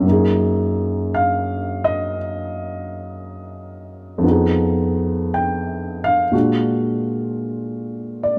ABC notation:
X:1
M:4/4
L:1/16
Q:"Swing" 1/4=57
K:Gblyd
V:1 name="Grand piano"
z4 f2 e2 z8 | z4 =g2 f2 z6 z =d |]
V:2 name="Grand piano"
[G,,G,B,EA]16 | [F,,F,_CEA]8 [B,,A,=DFG]8 |]